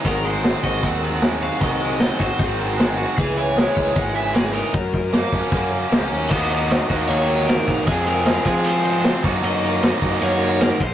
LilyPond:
<<
  \new Staff \with { instrumentName = "Overdriven electric guitar" } { \time 4/4 \key aes \mixolydian \tempo 4 = 153 bes'8 c''4 ees''8 ges''4. f''8 | ees''4 ees''8 c''2 r8 | aes'8 des''4 des''8 ges''8 fes''8 aes'8 bes'8~ | bes'4. r2 r8 |
ees''2 des''4 bes'4 | aes'8 bes'4 aes'8 c''4. r8 | ees''2 des''4 bes'8 c''8 | }
  \new Staff \with { instrumentName = "Overdriven electric guitar" } { \time 4/4 \key aes \mixolydian <aes, ees ges c' ges' aes'>4 <ges c' ges' aes'>8 <ges c' ges' aes'>8 <ges c' ges' aes'>8 <ges c' ges' aes'>8 <aes, ees ges c' ges' aes'>4 | <aes, ees ges c' ges' aes'>4 <ges c' ges' aes'>8 <ges c' ges' aes'>8 <ges c' ges' aes'>8 <ges c' ges' aes'>8 <aes, ees ges c' ges' aes'>4 | <des aes des' fes' aes'>4 <aes des' fes' aes'>8 <des' fes' aes'>8 <aes des' fes' aes'>8 <des' fes' aes'>8 <des aes des' fes' aes'>4 | <ges des' ges' bes'>4 <ges des' ges' bes'>8 <des' ges' bes'>8 <ges des' ges' bes'>8 <des' ges' bes'>8 <ges des' ges' bes'>4 |
<ees bes ees' ges'>4. <ees bes ees' ges'>2~ <ees bes ees' ges'>8 | <f, c f aes c' f'>4. <f, c f aes c' f'>2 <ges bes ees' ges'>8~ | <ges bes ees' ges'>4 <ges bes ees' ges'>2~ <ges bes ees' ges'>8 r8 | }
  \new Staff \with { instrumentName = "Overdriven electric guitar" } { \time 4/4 \key aes \mixolydian ees8 aes8 c'8 ges'8 c'8 ees8 aes8 ges'8 | ees8 aes8 c'8 ges'8 c'8 ees8 aes8 ges'8 | fes8 fes8 aes4 aes8 fes8 fes8 ees'8 | r4 bes8 des'8 bes4. des'8 |
<ges bes ees' ges'>4. <ges bes ees' ges'>2~ <ges bes ees' ges'>8 | <f aes c' aes'>4. <f aes c' aes'>2 <ees bes ees' ges'>8~ | <ees bes ees' ges'>4 <ees bes ees' ges'>2~ <ees bes ees' ges'>8 r8 | }
  \new Staff \with { instrumentName = "Picked electric bass" } { \clef bass \time 4/4 \key aes \mixolydian aes,,4. aes,,8 ees,2 | c,4. aes,,16 r16 aes,,2 | des,4. des,8 aes,,2 | ges,4. ges,16 r16 ges,4 des,8 ees,8 |
ees,4. ees,8 ees,4. bes,,8 | f,4. f2 ges,8 | ges,4. ges,8 ges,4. bes,,8 | }
  \new DrumStaff \with { instrumentName = "Drums" } \drummode { \time 4/4 <hho bd>4 <hho sn>8 bd8 <hho bd>4 <hho sn>4 | <hho bd>4 <hho sn>16 sn16 bd8 <hho bd>4 <hho sn>4 | <hho bd>4 <hho sn>8 bd8 <hho bd>4 <hho sn>4 | <hho bd>8 bd8 <hho sn>8 bd8 <hho bd>4 <hho sn>4 |
<cymc bd>8 cymr8 <cymr sn>8 <bd cymr>8 cymr8 cymr8 <cymr sn>8 <bd cymr>8 | <bd cymr>8 cymr8 <cymr sn>8 <bd cymr>8 cymr8 cymr8 <cymr sn>8 <bd cymr>8 | cymr8 cymr8 <cymr sn>8 <bd cymr>8 cymr8 cymr8 <cymr sn>8 <bd cymr>8 | }
>>